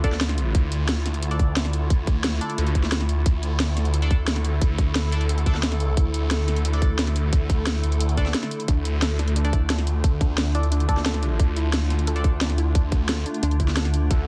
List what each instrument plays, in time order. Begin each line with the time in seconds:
Already playing: synth drone D3 A3 E4 F4
0.04 detuned saw bass D2, synth stab D4 A4 D5, kick, closed hi-hat
0.12 snare
0.21 snare, closed hi-hat
0.29 snare, closed hi-hat
0.38 closed hi-hat
0.55 detuned saw bass D2, kick, closed hi-hat
0.72 closed hi-hat
0.89 snare, closed hi-hat
1.06 snare, closed hi-hat
1.14 closed hi-hat
1.23 closed hi-hat
1.31 synth stab D4 A4 D5, closed hi-hat
1.39 kick, closed hi-hat
1.56 snare, closed hi-hat
1.65 snare, closed hi-hat
1.73 closed hi-hat
1.90 detuned saw bass D2, kick, closed hi-hat
2.07 kick, closed hi-hat
2.24 snare, closed hi-hat
2.41 synth stab D4 A4 D5, closed hi-hat
2.50 closed hi-hat
2.58 detuned saw bass D2, closed hi-hat
2.67 closed hi-hat
2.75 kick, closed hi-hat
2.84 snare
2.92 snare, closed hi-hat
3.00 snare, closed hi-hat
3.09 closed hi-hat
3.26 detuned saw bass D2, synth drone A4, kick, closed hi-hat
3.43 closed hi-hat
3.60 snare, closed hi-hat
3.77 snare, closed hi-hat
3.85 closed hi-hat
3.94 closed hi-hat
4.02 synth stab D4 A4 D5, closed hi-hat
4.11 kick, closed hi-hat
4.28 snare, closed hi-hat
4.36 snare, closed hi-hat
4.45 closed hi-hat
4.62 detuned saw bass D2, kick, closed hi-hat
4.78 kick, closed hi-hat
4.95 snare, closed hi-hat
5.12 synth stab D4 A4 D5, closed hi-hat
5.21 closed hi-hat
5.29 closed hi-hat
5.38 closed hi-hat
5.46 detuned saw bass D2, synth stab D4 A4 D5, kick, closed hi-hat
5.55 snare
5.63 snare, closed hi-hat
5.72 snare, closed hi-hat
5.80 closed hi-hat
5.97 detuned saw bass D2, kick, closed hi-hat
6.14 closed hi-hat
6.31 snare, closed hi-hat
6.48 snare, closed hi-hat
6.56 closed hi-hat
6.65 closed hi-hat
6.73 synth stab D4 A4 D5, closed hi-hat
6.82 kick, closed hi-hat
6.99 snare, closed hi-hat
7.07 snare, closed hi-hat
7.16 closed hi-hat
7.33 detuned saw bass D2, kick, closed hi-hat
7.50 kick, closed hi-hat
7.67 snare, closed hi-hat
7.84 detuned saw bass D2, closed hi-hat
7.92 closed hi-hat
8.01 closed hi-hat
8.09 closed hi-hat
8.17 synth stab D4 A4 D5, kick, closed hi-hat
8.26 snare
8.34 snare, closed hi-hat
8.43 snare, closed hi-hat
8.51 closed hi-hat
8.60 closed hi-hat
8.68 detuned saw bass D2, synth pluck D4, synth drone D4 F4, kick, closed hi-hat
8.85 closed hi-hat
9.02 synth pluck A4, snare, closed hi-hat
9.19 synth pluck D4, snare, closed hi-hat
9.28 closed hi-hat
9.36 synth pluck D4, closed hi-hat
9.45 synth stab D4 A4 D5, closed hi-hat
9.53 synth pluck E4, kick, closed hi-hat
9.70 synth pluck D4, snare, closed hi-hat
9.79 snare, closed hi-hat
9.87 closed hi-hat
10.04 detuned saw bass D2, synth pluck A4, kick, closed hi-hat
10.21 synth pluck D4, kick, closed hi-hat
10.38 synth pluck D4, snare, closed hi-hat
10.55 synth stab D4 A4 D5, synth pluck E4, closed hi-hat
10.63 closed hi-hat
10.72 synth pluck D4, closed hi-hat
10.80 closed hi-hat
10.89 detuned saw bass D2, synth stab D4 A4 D5, kick, closed hi-hat
10.97 snare
11.06 synth pluck A4, snare, closed hi-hat
11.14 snare, closed hi-hat
11.23 synth pluck D4, closed hi-hat
11.39 detuned saw bass D2, synth pluck D4, kick, closed hi-hat
11.56 synth pluck E4, closed hi-hat
11.73 synth pluck D4, snare, closed hi-hat
11.90 snare, closed hi-hat
11.99 closed hi-hat
12.07 synth pluck A4, closed hi-hat
12.16 synth stab D4 A4 D5, closed hi-hat
12.24 synth pluck D4, kick, closed hi-hat
12.41 synth pluck D4, snare, closed hi-hat
12.50 snare, closed hi-hat
12.58 synth pluck E4, closed hi-hat
12.75 detuned saw bass D2, synth pluck D4, kick, closed hi-hat
12.92 kick, closed hi-hat
13.09 synth pluck A4, snare, closed hi-hat
13.26 synth pluck D4, closed hi-hat
13.34 closed hi-hat
13.43 wobble bass D2, synth pluck D4, closed hi-hat
13.51 closed hi-hat
13.60 synth pluck E4, kick, closed hi-hat
13.68 snare
13.77 synth pluck D4, snare, closed hi-hat
13.85 snare, closed hi-hat
13.94 closed hi-hat
14.11 detuned saw bass D2, synth pluck A4, synth drone A4, kick, closed hi-hat